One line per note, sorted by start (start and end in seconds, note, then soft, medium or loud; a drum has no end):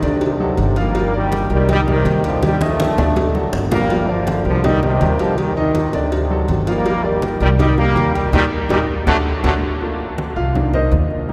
0.00 0.54 D2 medium
0.00 0.73 C3 medium
0.00 0.33 D3 medium
0.00 0.19 D#3 medium
0.00 0.33 D4 medium
0.00 0.34 D5 medium
0.00 cowbell medium
0.21 cowbell loud
0.21 high conga soft
0.40 0.70 F#3 medium
0.40 0.70 F#4 medium
0.40 0.70 A4 medium
0.40 high conga soft
0.57 1.44 G1 loud
0.57 cowbell medium
0.57 high conga medium
0.76 0.92 F3 medium
0.76 1.14 G3 medium
0.76 1.15 A#3 loud
0.76 0.92 F4 medium
0.76 0.92 F5 medium
0.76 cowbell medium
0.76 high conga soft
0.94 1.10 F3 medium
0.94 1.10 F4 medium
0.94 1.10 F5 medium
0.94 cowbell loud
0.94 high conga soft
1.13 1.48 D#3 medium
1.13 1.49 G3 medium
1.13 1.44 A#3 medium
1.13 1.44 A#4 medium
1.13 1.44 D5 medium
1.13 high conga soft
1.32 cowbell medium
1.32 high conga medium
1.50 2.02 C2 loud
1.50 1.69 D#3 medium
1.50 1.65 G3 medium
1.50 1.69 G3 medium
1.50 1.66 G4 medium
1.50 1.66 A#4 medium
1.50 high conga soft
1.69 1.84 D#3 medium
1.69 1.79 D#3 medium
1.69 1.79 G3 loud
1.69 1.84 D#4 medium
1.69 1.84 D#5 medium
1.69 cowbell loud
1.69 high conga soft
1.69 low conga medium
1.87 2.23 C3 medium
1.87 2.23 D#3 loud
1.87 2.02 G3 medium
1.87 2.03 G4 medium
1.87 2.03 A#4 medium
1.87 high conga soft
1.87 low conga medium
2.05 2.92 D#2 loud
2.05 2.21 G3 medium
2.05 2.21 G4 medium
2.05 2.21 A#4 medium
2.05 cowbell medium
2.05 high conga medium
2.24 2.42 D3 medium
2.24 2.42 F3 medium
2.24 2.54 G3 medium
2.24 2.55 G4 medium
2.24 2.55 A#4 medium
2.24 cowbell medium
2.24 high conga soft
2.42 2.60 D#3 medium
2.42 2.61 G3 loud
2.42 cowbell loud
2.42 high bongo medium
2.42 high conga medium
2.61 2.91 D#3 medium
2.61 3.17 F3 medium
2.61 3.36 A3 medium
2.61 2.92 D#4 medium
2.61 2.92 D#5 medium
2.61 high bongo medium
2.61 high conga medium
2.80 cowbell medium
2.80 high bongo medium
2.80 high conga loud
2.97 3.49 D2 medium
2.97 3.28 D3 medium
2.97 3.29 D4 medium
2.97 3.29 D5 medium
2.97 cowbell medium
2.97 low bongo loud
2.97 low conga loud
3.16 cowbell loud
3.16 low conga medium
3.35 3.65 F#3 medium
3.35 3.65 F#4 medium
3.35 3.66 A4 medium
3.35 low bongo medium
3.53 4.40 G1 medium
3.53 cowbell medium
3.53 low bongo loud
3.71 3.87 F3 medium
3.71 4.07 G3 medium
3.71 4.06 A#3 loud
3.71 3.87 F4 medium
3.71 3.87 F5 medium
3.71 cowbell medium
3.71 low bongo medium
3.71 low conga loud
3.90 4.05 F3 medium
3.90 4.06 F4 medium
3.90 4.06 F5 medium
3.90 cowbell loud
3.90 high conga soft
4.08 4.46 D3 medium
4.08 4.45 F3 loud
4.08 4.39 A#3 medium
4.08 4.39 A#4 medium
4.08 4.39 D5 medium
4.08 high conga soft
4.27 cowbell medium
4.27 high conga loud
4.45 4.97 C2 medium
4.45 4.64 D3 medium
4.45 4.63 F3 loud
4.45 4.61 G3 medium
4.45 4.61 G4 medium
4.45 4.61 A#4 medium
4.45 high conga soft
4.64 4.79 D#3 medium
4.64 4.81 D#3 medium
4.64 4.83 G3 loud
4.64 4.79 D#4 loud
4.64 4.80 D#5 medium
4.64 cowbell loud
4.64 high conga soft
4.64 low conga medium
4.82 5.18 C3 medium
4.82 5.17 D#3 loud
4.82 4.98 G3 medium
4.82 4.98 G4 medium
4.82 4.98 A#4 medium
4.82 high conga soft
4.82 low conga medium
5.01 5.88 D#2 loud
5.01 5.16 G3 medium
5.01 5.16 G4 medium
5.01 5.17 A#4 medium
5.01 cowbell medium
5.01 high conga medium
5.19 5.38 D3 medium
5.19 5.37 F3 medium
5.19 5.50 G3 medium
5.19 5.50 G4 medium
5.19 5.50 A#4 medium
5.19 cowbell medium
5.19 high conga soft
5.37 5.58 A#2 medium
5.37 5.55 D#3 loud
5.37 cowbell loud
5.37 high conga soft
5.56 6.64 C3 medium
5.56 6.08 D#3 medium
5.56 5.87 D#3 medium
5.56 5.87 D#4 loud
5.56 5.87 D#5 loud
5.56 high conga soft
5.75 cowbell medium
5.75 high conga medium
5.93 6.45 D2 medium
5.93 6.24 D3 medium
5.93 6.24 D4 medium
5.93 6.24 D5 medium
5.93 cowbell medium
6.12 cowbell loud
6.12 high conga soft
6.30 6.61 F#3 medium
6.30 6.61 F#4 medium
6.30 6.61 A4 medium
6.30 high conga soft
6.48 7.35 G1 medium
6.48 cowbell medium
6.48 high conga medium
6.66 6.82 F3 loud
6.66 7.02 G3 medium
6.66 7.04 A#3 loud
6.66 6.83 F4 medium
6.66 6.83 F5 medium
6.66 cowbell medium
6.66 high conga soft
6.85 7.01 F3 medium
6.85 7.01 F4 medium
6.85 7.01 F5 medium
6.85 cowbell loud
6.85 high conga soft
7.04 7.41 D#3 medium
7.04 7.39 G3 loud
7.04 7.34 A#3 medium
7.04 7.35 A#4 medium
7.04 7.35 D5 medium
7.04 high conga soft
7.22 cowbell medium
7.22 high conga loud
7.40 7.92 C2 loud
7.40 7.50 D#3 medium
7.40 7.49 G3 loud
7.40 7.56 G3 medium
7.40 7.56 G4 medium
7.40 7.57 A#4 medium
7.40 high conga soft
7.59 7.75 D#3 medium
7.59 7.77 D#3 medium
7.59 7.77 G3 loud
7.59 7.75 D#4 medium
7.59 7.75 D#5 medium
7.59 cowbell loud
7.59 high conga soft
7.59 low conga medium
7.77 7.93 G3 medium
7.77 8.13 G3 medium
7.77 8.12 A#3 loud
7.77 7.93 G4 medium
7.77 7.93 A#4 medium
7.77 high conga soft
7.77 low conga medium
7.96 8.30 D#2 loud
7.96 8.11 G3 medium
7.96 8.12 G4 medium
7.96 8.12 A#4 medium
7.96 cowbell medium
7.96 high conga medium
8.14 8.33 D#3 medium
8.14 8.30 G3 medium
8.14 8.32 G3 medium
8.14 8.30 G4 medium
8.14 8.30 A#4 medium
8.14 cowbell medium
8.14 high conga soft
8.32 8.47 D#2 medium
8.32 8.43 A#2 loud
8.32 8.43 D#3 loud
8.32 8.43 G3 loud
8.32 8.45 A#3 loud
8.32 8.45 D#4 medium
8.32 8.45 G4 loud
8.32 cowbell loud
8.32 low conga loud
8.69 8.84 D#2 loud
8.69 8.80 A#2 medium
8.69 8.80 D#3 medium
8.69 8.80 G3 medium
8.69 8.82 A#3 loud
8.69 8.82 D#4 loud
8.69 8.82 G4 medium
8.69 cowbell loud
8.69 low conga loud
9.07 9.21 D2 medium
9.07 9.16 D3 loud
9.07 9.16 F#3 loud
9.07 9.16 A3 loud
9.07 9.19 D4 loud
9.07 9.19 F#4 loud
9.07 9.19 A4 loud
9.07 cowbell loud
9.07 low conga loud
9.44 9.58 D2 loud
9.44 9.53 D3 loud
9.44 9.53 F#3 medium
9.44 9.53 A3 loud
9.44 9.56 D4 loud
9.44 9.56 F#4 loud
9.44 9.56 A4 medium
9.44 cowbell loud
9.44 low conga loud
9.81 10.06 A3 medium
9.81 10.06 A#3 medium
9.81 10.06 F4 medium
9.81 high conga soft
10.00 high conga soft
10.18 high conga loud
10.36 10.88 C2 medium
10.36 10.71 F4 medium
10.36 10.71 F5 medium
10.36 high conga soft
10.54 10.79 D#3 medium
10.54 10.79 A#3 medium
10.54 10.80 D4 medium
10.54 high conga soft
10.54 low conga medium
10.74 10.92 D#4 medium
10.74 10.92 A#4 medium
10.74 10.92 C5 medium
10.74 10.92 D#5 medium
10.74 high conga soft
10.74 low conga medium
10.91 11.33 D#2 loud
10.91 high conga medium
11.11 high conga soft
11.28 11.33 G3 medium
11.28 11.33 A#3 medium
11.28 11.33 D#4 medium
11.28 high conga soft